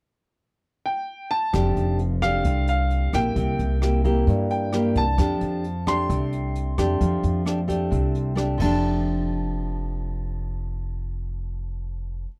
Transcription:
0.86 grand piano G5
1.31 grand piano A5
1.53 upright bass F1, nylon-string guitar F3 A3 D4 G4, kick, cross-stick, closed hi-hat
1.77 upright bass F1, closed hi-hat
1.99 closed hi-hat
2.22 nylon-string guitar A3 D4 G4, grand piano F5, kick, cross-stick, closed hi-hat
2.44 upright bass C2, nylon-string guitar C3, kick, closed hi-hat
2.67 grand piano F5, closed hi-hat
2.90 closed hi-hat
3.13 upright bass A#1, nylon-string guitar A#3 E4 G4, grand piano G5, kick, cross-stick, closed hi-hat
3.36 upright bass C2, nylon-string guitar C3, kick, closed hi-hat
3.59 upright bass C2, closed hi-hat
3.82 nylon-string guitar A#3 E4 G4, cross-stick, closed hi-hat
4.04 nylon-string guitar A#3 E4 G4, kick, closed hi-hat
4.27 nylon-string guitar G2, upright bass G2, kick, closed hi-hat
4.51 grand piano G5, closed hi-hat
4.73 nylon-string guitar A#3 E4 G4, cross-stick, closed hi-hat
4.96 upright bass C2, grand piano A5, kick, closed hi-hat
5.18 upright bass F2, nylon-string guitar F3 A3 D4 G4, kick, cross-stick, closed hi-hat
5.41 upright bass F2, closed hi-hat
5.64 closed hi-hat
5.87 nylon-string guitar A3 D4 G4, grand piano C6, kick, cross-stick, closed hi-hat
6.09 upright bass C2, nylon-string guitar C3, kick, closed hi-hat
6.33 closed hi-hat
6.55 closed hi-hat
6.78 upright bass F2, nylon-string guitar A3 D4 G4, kick, cross-stick, closed hi-hat
7.01 upright bass F2, nylon-string guitar F3, kick, closed hi-hat
7.23 upright bass F2, closed hi-hat
7.45 nylon-string guitar A3 D4 G4, cross-stick, closed hi-hat
7.68 nylon-string guitar A3 D4 G4, kick, closed hi-hat
7.91 upright bass C2, nylon-string guitar C3, kick, closed hi-hat
8.15 closed hi-hat
8.36 nylon-string guitar A3 D4 G4, cross-stick, closed hi-hat
8.58 upright bass F1, nylon-string guitar F3 A3, grand piano A5, kick, crash
8.62 nylon-string guitar D4 G4

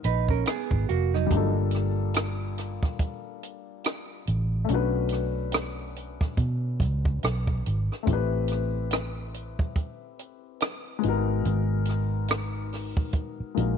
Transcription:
Already playing: grand piano G#3 B3 D#4 F#4 A#4
0.04 fingered electric bass A#1, clean electric guitar D#4 B4, closed hi-hat
0.29 clean electric guitar C#4 A#4, kick
0.46 clean electric guitar B3 G#4, cross-stick, closed hi-hat
0.71 fingered electric bass G#1, kick
0.89 fingered electric bass F1, clean electric guitar A#3 F#4, closed hi-hat
1.14 clean electric guitar F#3 D#4, cross-stick
1.26 grand piano G3 A3
1.31 fingered electric bass G1, grand piano D4 F4, kick, closed hi-hat
1.35 grand piano A#3 A4
1.71 cross-stick, closed hi-hat
2.14 cross-stick, closed hi-hat
2.58 cross-stick, closed hi-hat
2.83 kick, cross-stick
2.99 kick, closed hi-hat
3.43 closed hi-hat
3.84 cross-stick, closed hi-hat
4.27 fingered electric bass A1, closed hi-hat
4.65 grand piano A3 C#4
4.69 fingered electric bass B1, grand piano D4 F#4, closed hi-hat
4.74 grand piano B4
5.09 cross-stick, closed hi-hat
5.52 cross-stick, closed hi-hat
5.96 closed hi-hat
6.21 kick, cross-stick
6.37 fingered electric bass B2, kick, closed hi-hat
6.80 fingered electric bass C#2, kick, closed hi-hat
7.05 kick
7.23 fingered electric bass B1, cross-stick, closed hi-hat
7.47 kick
7.66 fingered electric bass G#1, closed hi-hat
7.92 cross-stick
8.03 grand piano A3 C4
8.07 fingered electric bass A1, grand piano E4 G4, kick, closed hi-hat
8.13 grand piano B4
8.48 cross-stick, closed hi-hat
8.91 cross-stick, closed hi-hat
9.34 closed hi-hat
9.59 kick
9.76 kick, closed hi-hat
10.19 closed hi-hat
10.60 cross-stick, closed hi-hat
10.99 grand piano G#3 B3
11.03 fingered electric bass G#1, grand piano D#4 F#4, closed hi-hat
11.09 grand piano A#4
11.45 fingered electric bass G#1, closed hi-hat
11.85 cross-stick, closed hi-hat
12.28 cross-stick, closed hi-hat
12.72 cross-stick, open hi-hat
12.97 kick
13.13 kick, closed hi-hat
13.40 muted fingered electric bass stroke
13.55 fingered electric bass A#1, grand piano G#3 A#3 D#4 F#4, closed hi-hat
13.59 grand piano A#4

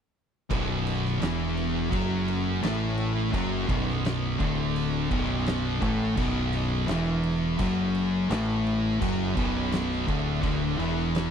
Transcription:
0.50 picked electric bass B0, distorted electric guitar B1 B2, kick, crash
0.87 crash
1.05 snare
1.21 picked electric bass E1, distorted electric guitar E2 E3, snare, crash
1.57 crash
1.90 picked electric bass F#1, distorted electric guitar F#2 F#3, kick, crash
2.28 crash
2.62 picked electric bass A1, distorted electric guitar A2 A3, snare, crash
2.97 crash
3.33 picked electric bass F#1, distorted electric guitar F#2 F#3, kick, crash
3.68 picked electric bass B0, distorted electric guitar B1 B2, kick, crash
3.89 snare
4.05 snare, crash
4.39 picked electric bass D1, distorted electric guitar D2 D3, kick, crash
4.76 crash
5.10 picked electric bass B0, distorted electric guitar B1 B2, kick, crash
5.46 snare, crash
5.81 picked electric bass A1, distorted electric guitar A2 A3, kick, crash
6.16 picked electric bass B0, distorted electric guitar B1 B2, kick, crash
6.53 crash
6.88 picked electric bass E1, distorted electric guitar E2 E3, snare, crash
7.24 crash
7.59 picked electric bass F#1, distorted electric guitar F#2 F#3, kick, crash
7.95 crash
8.29 picked electric bass A1, distorted electric guitar A2 A3, snare, crash
8.67 crash
9.00 distorted electric guitar F#2 F#3, kick, crash
9.36 picked electric bass B0, distorted electric guitar B1 B2, kick, crash
9.72 snare, crash
9.92 snare
10.07 picked electric bass D1, distorted electric guitar D2 D3, kick, crash
10.41 picked electric bass D1, distorted electric guitar D2 D3, kick, crash
10.76 picked electric bass E1, distorted electric guitar E2 E3, crash
11.15 snare, crash

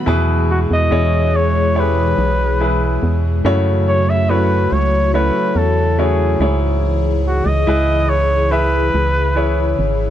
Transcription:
0.06 fm bass E2, grand piano B2 E4 G#4 B4, analog synth pad B2 E3 G#3 E4 G#4
0.51 flugelhorn F#4
0.71 fm bass E2, flugelhorn D#5
0.91 fm bass E2, grand piano E4 G#4 C#5
1.36 flugelhorn C#5
1.75 grand piano E4 G4 C#5
1.79 grand piano G#4, flugelhorn B4
2.18 fm bass B1
2.61 grand piano E4 G#4 B4
3.03 fm bass E2
3.45 fm bass F#2, grand piano C#3 A3 C#4 E4 F#4 C#5, analog synth pad C#3 F#3 A3 E4 F#4
3.89 flugelhorn C#5
4.10 flugelhorn E5
4.29 grand piano A3 C#4 E4 F#4 C#5, flugelhorn B4
4.72 fm bass C#2, flugelhorn C#5
5.14 grand piano A3 C#4 E4 F#4 C#5, flugelhorn B4
5.55 fm bass E2, flugelhorn A4
5.98 grand piano A3 C#4 E4 F#4 C#5, flugelhorn G#4
6.40 fm bass C#2, grand piano G#2 E4 G#4 C#5, analog synth pad E3 G#4
7.27 flugelhorn F#4
7.46 fm bass C#2, flugelhorn D#5
7.67 fm bass C#2, grand piano E4 G#4 B4
8.09 flugelhorn C#5
8.51 grand piano E4 G#4 E5, flugelhorn B4
8.94 fm bass C#2
9.36 grand piano E4 G#4 C#5
9.79 fm bass G#1

